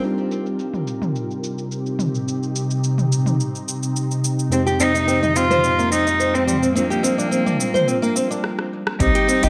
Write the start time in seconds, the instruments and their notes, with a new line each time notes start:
Already playing: ambient pad F4 A#4 G5
0.01 ambient pad C3, synth keys G3 C4 D#4, cabasa
0.06 synth keys G4
0.11 ambient pad C4
0.15 ambient pad D#4, cabasa
0.31 cabasa
0.46 cabasa
0.59 cabasa
0.74 mid tom, cabasa
0.86 ambient pad G4, cabasa
1.02 mid tom, cabasa
1.16 cabasa
1.31 cabasa
1.44 cabasa
1.58 cabasa
1.72 cabasa
1.86 cabasa
1.99 mid tom, cabasa
2.15 cabasa
2.28 cabasa
2.43 cabasa
2.56 cabasa
2.71 cabasa
2.84 cabasa
2.98 mid tom, cabasa
3.12 cabasa
3.26 mid tom, cabasa
3.40 cabasa
3.55 cabasa
3.68 cabasa
3.83 cabasa
3.96 cabasa
4.11 cabasa
4.24 cabasa
4.39 cabasa
4.49 synth keys F2 G#3 C4 D#4, ambient pad F3, nylon-string guitar C4, cello C4, cabasa
4.53 synth keys G4
4.67 nylon-string guitar G4, cabasa
4.80 ambient pad G#3, nylon-string guitar C4, cello D#4, cabasa
4.95 nylon-string guitar D#4, cabasa
5.08 nylon-string guitar C4, cabasa
5.23 nylon-string guitar D#4, mid tom, cabasa
5.36 nylon-string guitar C4, cello F4, cabasa
5.40 ambient pad G5
5.50 nylon-string guitar C5, mid tom, cabasa
5.64 nylon-string guitar C4, cabasa
5.79 nylon-string guitar A#3, cabasa
5.91 nylon-string guitar C4, cello D#4, cabasa
6.07 nylon-string guitar D#4, cabasa
6.20 nylon-string guitar C5, cabasa
6.35 cello C4, nylon-string guitar C4, cabasa
6.47 nylon-string guitar G3, mid tom, cabasa
6.62 nylon-string guitar C4, cabasa
6.74 synth keys G3 A#3 D4, ambient pad G3, cello A#3, nylon-string guitar C4, cabasa
6.78 synth keys F4
6.90 nylon-string guitar G4, ambient pad A#4, cabasa
6.96 ambient pad D4
7.03 nylon-string guitar C4, cabasa
7.18 nylon-string guitar D4, cabasa
7.31 nylon-string guitar C4, ambient pad F4, cabasa
7.46 nylon-string guitar D4, mid tom, cabasa
7.60 nylon-string guitar C4, cabasa
7.74 nylon-string guitar C5, mid tom, cabasa
7.88 nylon-string guitar C4, cabasa
8.02 nylon-string guitar A#3, cabasa
8.16 nylon-string guitar C4, cabasa
8.31 nylon-string guitar D4, cabasa
8.44 cross-stick
8.59 cross-stick
8.87 cross-stick
8.99 sub bass C2, ambient pad C3, synth keys G3 C4 D#4 G4, nylon-string guitar C4, cello D#4, kick, closed hi-hat, cabasa
9.15 nylon-string guitar G4, closed hi-hat, cabasa
9.28 nylon-string guitar C4, cabasa
9.41 sub bass G1, synth keys G3 C4 D#4, nylon-string guitar D#4, cello G4, closed hi-hat, cabasa
9.45 synth keys G4